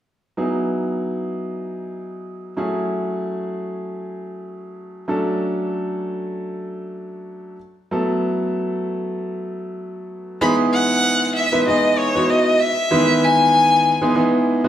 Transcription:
0.37 grand piano F#3 B3 D#4 E4 G#4
2.57 grand piano F#3 A3 C#4 E4 G#4
5.08 grand piano F#3 A3 C#4 D4 A4
7.91 grand piano F#3 A3 B3 E4 A4
10.41 grand piano E3 G#3 B3 D#4 G#4, violin B5
10.73 violin F#5
11.36 violin E5
11.52 grand piano E3 G#3 B3 D#4 B4
11.67 grand piano E3 G#3 B3 D#4 G#4, violin D#5
11.98 violin C#5
12.15 grand piano E3 G#3 B3 D#4 F#4
12.29 violin D#5
12.59 grand piano D#4 F#4, violin E5
12.91 grand piano D#3 E3 G#3 B3 B4
13.24 violin G#5
14.02 grand piano E3 G#3 B3 D#4 G#4
14.15 grand piano E3 G#3 B3 D#4 G#4
14.64 grand piano E3 G#3 B3 D#4 F#4

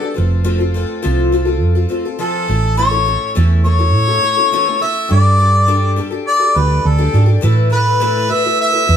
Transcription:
Already playing: harmonica A4
0.01 twelve-string acoustic guitar D4 G4 A4
0.14 fingered electric bass F1, twelve-string acoustic guitar A3 C4 F4 A4
0.44 twelve-string acoustic guitar F3 A3 C4 F4 A4
0.58 twelve-string acoustic guitar C4 F4 A4
0.74 twelve-string acoustic guitar A3 C4 F4 A4
1.02 fingered electric bass C2, twelve-string acoustic guitar F3 A3 C4 F4 A4
1.32 twelve-string acoustic guitar A3 C4 F4 A4
1.45 twelve-string acoustic guitar C4 F4 A4
1.63 fingered electric bass F2
1.75 twelve-string acoustic guitar C4 F4 A4
1.89 twelve-string acoustic guitar A3 C4 F4 A4
2.05 twelve-string acoustic guitar C4 F4 A4
2.19 twelve-string acoustic guitar F3 A3 C4 F4 A4, harmonica A4
2.48 fingered electric bass A1, twelve-string acoustic guitar A3 C#4 E4 A4
2.77 twelve-string acoustic guitar A2 E3 A3 C#4 E4 A4, harmonica C#5
2.91 twelve-string acoustic guitar A3 C#4 E4 A4
3.05 twelve-string acoustic guitar A3 C#4 E4 A4
3.35 fingered electric bass E2, twelve-string acoustic guitar A2 E3 A3 C#4 E4 A4
3.64 twelve-string acoustic guitar A3 C#4 E4 A4, harmonica C#5
3.79 twelve-string acoustic guitar A3 C#4 E4 A4
3.95 fingered electric bass A2
4.07 twelve-string acoustic guitar A3 C#4 E4 A4
4.21 twelve-string acoustic guitar A3 C#4 E4 A4
4.37 twelve-string acoustic guitar A3 C#4 E4 A4
4.52 twelve-string acoustic guitar A2 E3 A3 C#4 E4 A4
4.66 twelve-string acoustic guitar A3 C#4 E4 A4
4.80 twelve-string acoustic guitar A3 C#4 E4 A4, harmonica E5
5.08 fingered electric bass G2, twelve-string acoustic guitar G3 D4 G4 A4, harmonica D5
5.38 twelve-string acoustic guitar G3 D4 G4 A4
5.66 twelve-string acoustic guitar G3 D4 G4 A4
5.96 twelve-string acoustic guitar G3 D4 G4 A4
6.11 twelve-string acoustic guitar D4 G4 A4
6.28 harmonica D5
6.40 twelve-string acoustic guitar D4 G4 A4
6.55 fingered electric bass D2, twelve-string acoustic guitar G3 D4 G4 A4, harmonica B4
6.85 fingered electric bass D2, harmonica A4
6.98 twelve-string acoustic guitar G3 D4 G4 A4
7.14 fingered electric bass G#2, twelve-string acoustic guitar G3 D4 G4 A4
7.26 twelve-string acoustic guitar D4 G4 A4
7.41 twelve-string acoustic guitar A2 E3 A3 E4 A4 B4, fingered electric bass A2
7.70 twelve-string acoustic guitar A3 E4 A4 B4, harmonica B4
8.00 twelve-string acoustic guitar A2 E3 A3 E4 A4 B4
8.29 twelve-string acoustic guitar A3 E4 A4 B4, harmonica E5
8.44 twelve-string acoustic guitar A3 E4 A4 B4
8.61 harmonica E5
8.72 twelve-string acoustic guitar A3 E4 A4 B4
8.86 fingered electric bass E2, twelve-string acoustic guitar A3 E4 A4 B4

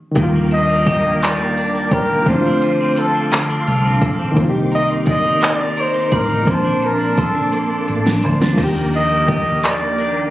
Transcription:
0.11 reed electric piano D#3 G3
0.15 fingered electric bass D#2, clean electric guitar D#3, reed electric piano A#3, tonewheel organ A#4 G5 A#5 D6, kick, closed hi-hat
0.23 reed electric piano F4
0.36 clean electric guitar A#3
0.51 clean electric guitar D4, flugelhorn D#5, closed hi-hat
0.69 clean electric guitar A#3
0.87 clean electric guitar G4, flugelhorn D#5, kick, closed hi-hat
1.03 clean electric guitar A#3
1.17 flugelhorn D#5
1.22 clean electric guitar D#3, flugelhorn D5, clap, closed hi-hat
1.40 clean electric guitar A#3
1.57 clean electric guitar D4, closed hi-hat
1.75 clean electric guitar A#3
1.91 fingered electric bass C2, clean electric guitar G4, flugelhorn A#4, kick, closed hi-hat
2.11 clean electric guitar A#3
2.22 reed electric piano F3 A3, tonewheel organ A4 F5 C6, kick
2.27 fingered electric bass D2, clean electric guitar D3, reed electric piano C4, flugelhorn C5, closed hi-hat
2.31 reed electric piano D4 E4
2.41 reed electric piano F4
2.46 clean electric guitar C4
2.61 clean electric guitar F4, closed hi-hat
2.81 clean electric guitar C4
2.96 clean electric guitar A4, flugelhorn A4, closed hi-hat
3.14 clean electric guitar C4
3.31 clean electric guitar D3, flugelhorn A4, clap, closed hi-hat
3.50 clean electric guitar C4
3.67 fingered electric bass C2, clean electric guitar F4, closed hi-hat
3.85 clean electric guitar C4
4.02 fingered electric bass A#1, clean electric guitar A4, kick, closed hi-hat
4.20 clean electric guitar C4
4.32 reed electric piano D#3 A#3, tonewheel organ A#3 D#4
4.37 fingered electric bass C2, clean electric guitar C4, reed electric piano C4 D#4, kick, closed hi-hat
4.44 reed electric piano F4
4.50 reed electric piano G4
4.54 clean electric guitar D#4
4.72 clean electric guitar A#4, flugelhorn D#5, closed hi-hat
4.88 clean electric guitar D#4
5.06 clean electric guitar D5, kick, closed hi-hat
5.10 flugelhorn D#5
5.23 clean electric guitar D#4
5.41 clean electric guitar C4, clap, closed hi-hat
5.45 flugelhorn D5
5.59 clean electric guitar D#4
5.77 clean electric guitar A#4, closed hi-hat
5.81 flugelhorn C5
5.94 clean electric guitar D#4
6.12 fingered electric bass A1, flugelhorn A#4, clean electric guitar D5, kick, closed hi-hat
6.29 clean electric guitar D#4
6.42 reed electric piano F3 A#3, tonewheel organ A5
6.47 fingered electric bass A#1, clean electric guitar A#3, reed electric piano C4, flugelhorn C5, kick, closed hi-hat
6.51 reed electric piano D4 A5
6.65 clean electric guitar D4
6.82 clean electric guitar A4, flugelhorn A#4, closed hi-hat
6.99 clean electric guitar D4
7.17 flugelhorn A4, clean electric guitar C5, kick, closed hi-hat
7.35 clean electric guitar D4
7.52 clean electric guitar A#3, flugelhorn A4, closed hi-hat
7.71 clean electric guitar D4
7.88 fingered electric bass A1, clean electric guitar A4, closed hi-hat
8.06 clean electric guitar D4, snare
8.22 fingered electric bass D2, clean electric guitar C5, closed hi-hat
8.41 clean electric guitar D4, snare
8.53 reed electric piano F3 A#3
8.57 fingered electric bass D#2, clean electric guitar D#3, reed electric piano D#3, tonewheel organ A#4 G5 A#5, kick, crash
8.64 reed electric piano G4
8.75 clean electric guitar A#3
8.93 clean electric guitar D4, flugelhorn D#5, closed hi-hat
9.11 clean electric guitar A#3
9.28 clean electric guitar G4, flugelhorn D#5, kick, closed hi-hat
9.45 clean electric guitar A#3
9.63 clean electric guitar D#3, flugelhorn D5, clap, closed hi-hat
9.82 clean electric guitar A#3
9.98 clean electric guitar D4, closed hi-hat
10.18 clean electric guitar A#3

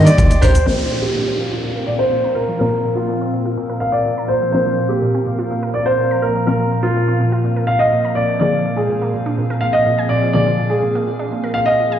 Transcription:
Already playing: synth pluck G3 A#3 D4 D#4 A#4, ambient pad G4 D5 G5 C6
0.05 grand piano D5, muted clean electric guitar stroke, closed hi-hat, shaker
0.18 analog synth bass D#2, muted clean electric guitar stroke, kick, closed hi-hat, floor tom, shaker
0.30 muted clean electric guitar stroke, closed hi-hat, floor tom, shaker
0.41 analog synth bass A1, clean electric guitar D4 G4 A#4, grand piano C5, floor tom, open hi-hat, shaker
0.54 muted clean electric guitar stroke, closed hi-hat, floor tom, shaker
0.66 synth arpeggio sound A#2, ambient pad A#2 F3 C4 A#4 F5, synth pluck F3 A#3 C4 A#4, grand piano C5, downlifter
0.79 synth arpeggio sound F3
0.91 synth arpeggio sound A#2
1.02 synth arpeggio sound A#3, grand piano G4
1.15 synth arpeggio sound A#2
1.27 synth arpeggio sound C4
1.39 synth arpeggio sound A#2
1.52 synth arpeggio sound F4
1.64 synth arpeggio sound A#2
1.76 synth arpeggio sound A#4
1.87 synth arpeggio sound A#2, grand piano D5
1.99 grand piano C5, synth arpeggio sound F5
2.12 synth arpeggio sound A#2
2.24 synth arpeggio sound A#5
2.35 synth arpeggio sound A#2, grand piano A#4
2.49 synth arpeggio sound F3
2.59 synth arpeggio sound A#2, synth pluck F3 A#3 C4 A#4, grand piano A#4
2.73 synth arpeggio sound F3
2.85 synth arpeggio sound A#2
2.95 synth arpeggio sound A#3, grand piano F4
3.09 synth arpeggio sound A#2
3.21 synth arpeggio sound C4
3.33 synth arpeggio sound A#2
3.45 synth arpeggio sound F4
3.57 synth arpeggio sound A#2
3.69 synth arpeggio sound A#4
3.80 synth arpeggio sound A#2, grand piano F5
3.92 grand piano D5, synth arpeggio sound F5
4.06 synth arpeggio sound A#2
4.18 synth arpeggio sound A#5
4.28 synth arpeggio sound A#2, grand piano C5
4.42 synth arpeggio sound F3
4.52 synth arpeggio sound A#2, synth pluck F3 A#3 C4 A#4, grand piano C5
4.66 synth arpeggio sound F3
4.78 synth arpeggio sound A#2
4.89 synth arpeggio sound A#3, grand piano G4
5.02 synth arpeggio sound A#2
5.14 synth arpeggio sound C4
5.27 synth arpeggio sound A#2
5.39 synth arpeggio sound F4
5.51 synth arpeggio sound A#2
5.63 synth arpeggio sound A#4
5.74 synth arpeggio sound A#2, grand piano D5
5.86 grand piano C5, synth arpeggio sound F5
5.99 synth arpeggio sound A#2
6.11 synth arpeggio sound A#5
6.22 synth arpeggio sound A#2, grand piano A#4
6.35 synth arpeggio sound F3
6.47 synth arpeggio sound A#2, synth pluck F3 A#3 C4 A#4, grand piano A#4
6.59 synth arpeggio sound F3
6.72 synth arpeggio sound A#2
6.83 synth arpeggio sound A#3, grand piano F4
6.96 synth arpeggio sound A#2
7.08 synth arpeggio sound C4
7.20 synth arpeggio sound A#2
7.32 synth arpeggio sound F4
7.44 synth arpeggio sound A#2
7.56 synth arpeggio sound A#4
7.67 synth arpeggio sound A#2, grand piano F5
7.79 grand piano D#5, synth arpeggio sound F5
7.93 synth arpeggio sound A#2
8.05 synth arpeggio sound A#5
8.15 synth arpeggio sound A#2, grand piano D5
8.29 synth arpeggio sound F3
8.40 synth arpeggio sound A#2, synth pluck D3 F3 A#3 G#4, ambient pad C4 G#4 F5, grand piano D5
8.53 synth arpeggio sound F3
8.65 synth arpeggio sound A#2
8.76 synth arpeggio sound G#3, grand piano G#4
8.90 synth arpeggio sound A#2
9.02 synth arpeggio sound A#3
9.14 synth arpeggio sound A#2
9.26 synth arpeggio sound D4
9.38 synth arpeggio sound A#2
9.50 synth arpeggio sound A#4
9.61 synth arpeggio sound A#2, grand piano F5
9.73 grand piano D#5, synth arpeggio sound F5
9.86 synth arpeggio sound A#2
9.99 synth arpeggio sound G#5
10.09 synth arpeggio sound A#2, grand piano D5
10.23 synth arpeggio sound F3
10.33 synth arpeggio sound A#2, synth pluck D3 F3 A#3 G#4, grand piano D5
10.47 synth arpeggio sound F3
10.59 synth arpeggio sound A#2
10.70 synth arpeggio sound G#3, grand piano G#4
10.83 synth arpeggio sound A#2
10.95 synth arpeggio sound A#3
11.07 synth arpeggio sound A#2
11.19 synth arpeggio sound D4
11.31 synth arpeggio sound A#2
11.44 synth arpeggio sound A#4
11.54 synth arpeggio sound A#2, grand piano F5
11.66 grand piano D#5, synth arpeggio sound F5
11.80 synth arpeggio sound A#2
11.92 synth arpeggio sound G#5

